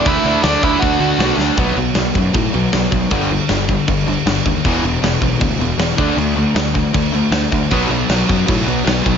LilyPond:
<<
  \new Staff \with { instrumentName = "Lead electric guitar" } { \time 4/4 \key b \minor \tempo 4 = 157 <e' e''>4 <d' d''>8 <e' e''>8 <fis' fis''>4. r8 | r1 | r1 | r1 |
r1 | r1 | }
  \new Staff \with { instrumentName = "Distorted electric guitar" } { \clef bass \time 4/4 \key b \minor <d a d'>1 | r1 | r1 | r1 |
r1 | <b, fis b>8 <b, fis b>8 <b, fis b>8 <b, fis b>8 <b, fis b>8 <b, fis b>8 <b, fis b>8 <b, fis b>8 | }
  \new Staff \with { instrumentName = "Distorted electric guitar" } { \clef bass \time 4/4 \key b \minor <d a d'>8 <d a d'>8 <d a d'>8 <d a d'>8 <d a d'>8 <d a d'>8 <d a d'>8 <d a d'>8 | <b, fis b>8 <b, fis>8 <b, fis>8 <b, fis>8 <b, fis>8 <b, fis>8 <b, fis>8 <b, fis>8 | <g, d g>8 <g, d>8 <g, d>8 <g, d>8 <g, d>8 <g, d>8 <g, d>8 <g, d>8 | <e, b, e>8 <e, b,>8 <e, b,>8 <e, b,>8 <e, b,>8 <e, b,>8 <e, b,>8 <d a d'>8 |
<d a>8 <d a>8 <d a>8 <d a>8 <d a>8 <d a>8 <d a>8 <d a>8 | <b, fis b>8 <b, fis>8 <b, fis>8 <b, fis>8 <b, fis>8 <b, fis>8 <b, fis>8 <b, fis>8 | }
  \new Staff \with { instrumentName = "Overdriven electric guitar" } { \clef bass \time 4/4 \key b \minor <d a d'>8 <d a d'>8 <d a d'>8 <d a d'>8 <d a d'>8 <d a d'>8 <d a d'>8 <d a d'>8 | <b, fis b>8 <b, fis>8 <b, fis>8 <b, fis>8 <b, fis>8 <b, fis>8 <b, fis>8 <b, fis>8 | <g, d g>8 <g, d>8 <g, d>8 <g, d>8 <g, d>8 <g, d>8 <g, d>8 <g, d>8 | <e, b, e>8 <e, b,>8 <e, b,>8 <e, b,>8 <e, b,>8 <e, b,>8 <e, b,>8 <d a d'>8 |
<d a>8 <d a>8 <d a>8 <d a>8 <d a>8 <d a>8 <d a>8 <d a>8 | <b, fis b>8 <b, fis>8 <b, fis>8 <b, fis>8 <b, fis>8 <b, fis>8 <b, fis>8 <b, fis>8 | }
  \new Staff \with { instrumentName = "Picked electric bass" } { \clef bass \time 4/4 \key b \minor d,8 d,8 d,8 d,8 d,8 d,8 b,,8 d,8 | b,,8 b,,8 b,,8 fis,8 a,8 b,,8 b,,8 b,,8 | g,,4 g,,4 g,,4 g,,8 dis,8 | e,,8 e,,8 e,,8 b,,8 d,8 e,,8 e,,8 d,8 |
d,4 d,4 d,4 d,8 d,8 | b,,8 b,,8 b,,8 fis,8 a,8 b,,8 b,,8 b,,8 | }
  \new DrumStaff \with { instrumentName = "Drums" } \drummode { \time 4/4 <hho bd>4 <hho sn>8 bd8 <hho bd>4 <hho sn>8 sn8 | <cymc bd>8 cymc8 <cymc sn>8 <cymc bd>8 <cymc bd>8 cymc8 <cymc sn>8 <cymc bd>8 | <cymc bd>8 cymc8 <cymc sn>8 <cymc bd>8 <cymc bd>8 cymc8 <cymc sn>8 <cymc bd>8 | <cymc bd>8 cymc8 <cymc sn>8 <cymc bd>8 <cymc bd>8 cymc8 <cymc sn>8 <cymc bd>8 |
cymc8 cymc8 <cymc sn>8 <cymc bd>8 <cymc bd>8 cymc8 <cymc sn>8 <cymc bd>8 | <cymc bd>8 cymc8 <cymc sn>8 <cymc bd>8 <cymc bd>8 cymc8 <cymc sn>8 <cymc bd>8 | }
>>